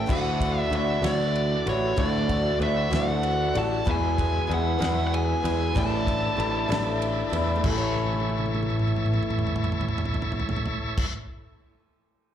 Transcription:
0.07 D2 D3 E3 A3 D4 E4 F#4 A4 D5 E5, kick, crash
0.11 F#5
0.40 A3 E4 F#4, kick, ride
0.59 E5
0.70 D2 D3 A3 D4 E4 F#4 D5, ride
0.76 E5
1.02 D2 D3 E3 A3 D4 E4 F#4 D5, snare, ride
1.36 ride
1.66 A1 A3 D4 E4 F#4 C#5, ride
1.96 D2 D3 E3 A3 D4 E4 F#4 D5, kick, ride
2.28 A3 E4 F#4, kick, ride
2.60 D2 D3 A3 D4 E4 F#4 D5 E5, ride
2.90 D2 E3 A3 D4 E4 F#4 D5, snare, ride
2.95 D3 F#5
3.23 ride
3.54 A1 A3 D4 E4 F#4 D5, ride
3.58 A5
3.86 E2 B2 E3 G#3 B3 E4 G#4 B4 E5, kick, ride
3.91 G#5
4.17 E3 G#3 B3 G#4, kick, ride
4.48 E2 E3 G#3 B3 E4 G#4 B4, ride
4.54 F#5
4.79 E2 B2 E3 G#3 B3 E4 G#4 B4, ride
4.83 F#5, snare
5.07 F#5
5.14 G#5, ride
5.42 E2 E3 G#3 B3 E4 G#4 B4, ride
5.74 A1 A2 D3 A3 D4 E4 A4 D5 E5, kick, ride
5.78 A5
6.04 A3 D4 E4, kick, ride
6.35 A1 D3 A3 D4 E4
6.39 D5, ride
6.68 A1 A2 D3 A3 D4 E4 D5
6.72 snare, ride
7.02 ride
7.29 E2 D4 E4 D5, ride
7.35 A3
7.56 A3
7.63 A1 A2 E3 A3 C#4 E4 A4 C#5 E5, kick, crash
7.67 E4 A4
7.78 C#5
7.95 high tom
8.04 high tom
8.13 high tom
8.20 high tom
8.29 high tom
8.38 high tom
8.46 high tom
8.55 high tom
8.63 high tom
8.70 mid tom
8.79 mid tom
8.88 mid tom
8.96 mid tom
9.06 mid tom
9.14 mid tom
9.23 mid tom
9.30 mid tom
9.39 mid tom
9.47 mid tom
9.56 mid tom
9.64 mid tom
9.72 mid tom
9.81 mid tom
9.88 mid tom
9.98 mid tom
10.05 floor tom
10.14 floor tom
10.22 floor tom
10.32 floor tom
10.40 floor tom
10.49 floor tom
10.56 floor tom
10.66 floor tom
10.98 kick, crash

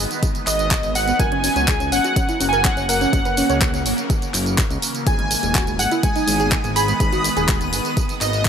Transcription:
Already playing: D#3 F#3 B3
0.11 closed hi-hat, tambourine
0.23 kick, closed hi-hat, tambourine
0.35 closed hi-hat, tambourine
0.47 G#1 D#5, clap, open hi-hat, tambourine
0.59 closed hi-hat, tambourine
0.71 kick, clap, closed hi-hat, tambourine
0.83 G#1, closed hi-hat, tambourine
0.95 F#5, open hi-hat, tambourine
1.08 closed hi-hat, tambourine
1.19 F#1 C#3 A#3 A#4 G#5, kick, closed hi-hat, tambourine
1.32 C#4, closed hi-hat
1.44 C#4, open hi-hat, tambourine
1.56 C#2 C#4, closed hi-hat, tambourine
1.68 G#4, kick, clap, closed hi-hat, tambourine
1.80 C#4, closed hi-hat, tambourine
1.92 F#1 C#4 F#5, open hi-hat, tambourine
2.04 F#4, closed hi-hat, tambourine
2.16 C#4, kick, closed hi-hat, tambourine
2.29 E4, closed hi-hat, tambourine
2.40 F#1 C#4, open hi-hat, tambourine
2.49 G#5
2.53 A#4, closed hi-hat, tambourine
2.65 C#4 F#5, kick, clap, closed hi-hat, tambourine
2.77 F#1 C#4, closed hi-hat, tambourine
2.89 A#4 F#5, open hi-hat, tambourine
3.01 C#4, closed hi-hat, tambourine
3.13 F#1 E3, kick, closed hi-hat, tambourine
3.25 B4, closed hi-hat, tambourine
3.37 C#4, open hi-hat, tambourine
3.50 C#2 C#5, closed hi-hat, tambourine
3.61 kick, clap, closed hi-hat, tambourine
3.74 C#4, closed hi-hat, tambourine
3.86 F#1, open hi-hat, tambourine
3.98 closed hi-hat, tambourine
4.10 kick, closed hi-hat, tambourine
4.22 closed hi-hat, tambourine
4.34 F#1, clap, open hi-hat, tambourine
4.46 closed hi-hat, tambourine
4.58 kick, clap, closed hi-hat, tambourine
4.70 C#2, closed hi-hat, tambourine
4.82 open hi-hat, tambourine
4.95 closed hi-hat, tambourine
5.06 G#1 D#3 G#3 B3 G#4 G#5 D#6 D#7, kick, closed hi-hat, tambourine
5.19 G#3, closed hi-hat
5.31 G#3, open hi-hat, tambourine
5.43 D#1 G#3, closed hi-hat, tambourine
5.55 F#4, kick, clap, closed hi-hat, tambourine
5.67 G#3, closed hi-hat, tambourine
5.79 G#1 G#3 F#5, open hi-hat, tambourine
5.91 E4, closed hi-hat, tambourine
6.03 G#3 G#5, kick, closed hi-hat, tambourine
6.16 D#4, closed hi-hat, tambourine
6.28 G#1 G#3, open hi-hat, tambourine
6.40 G#4, closed hi-hat, tambourine
6.52 G#3, kick, clap, closed hi-hat, tambourine
6.64 G#1 G#3, closed hi-hat, tambourine
6.76 G#4 B5, open hi-hat, tambourine
6.88 G#3, closed hi-hat, tambourine
7.00 G#1 F#3 G#3 B5, kick, closed hi-hat, tambourine
7.12 F#4, closed hi-hat, tambourine
7.24 G#3, open hi-hat, tambourine
7.37 D#1 G#4, closed hi-hat, tambourine
7.49 G#3, kick, clap, closed hi-hat, tambourine
7.61 G#3, closed hi-hat, tambourine
7.73 G#1, open hi-hat, tambourine
7.85 closed hi-hat, tambourine
7.97 kick, closed hi-hat, tambourine
8.09 closed hi-hat, tambourine
8.21 G#1 D#5, clap, open hi-hat, tambourine
8.33 closed hi-hat, tambourine
8.45 kick, clap, closed hi-hat

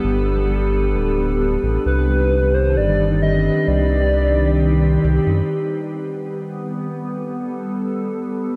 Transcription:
Already playing: G3 B3 D4 A4 B4
0.04 G1 G3
0.15 B3
0.38 G3
0.49 G3
0.61 D4
0.72 D4
0.84 G3
0.95 D1 B3
1.18 G3
1.29 G3
1.40 D4
1.52 D4
1.63 A1 G3
1.75 B3
1.86 C2 D#3 B4
1.97 G3
2.09 G3
2.16 C4 D#4
2.31 D#4
2.43 G3
2.54 D4 C5
2.77 G1 G3 D5
2.88 G3
3.00 D#4
3.11 D#4 G4
3.22 G3 D#5
3.34 D4
3.56 G3
3.68 C2 G3 D5
3.79 D#4
3.90 D#4
4.02 G3
4.13 D4
4.36 G3
4.47 G3
4.59 D#4
4.70 D#4
4.81 C5
5.04 C2 G4
5.16 C4
5.27 F#2 D#4
5.50 G3
5.57 B3
6.67 A4

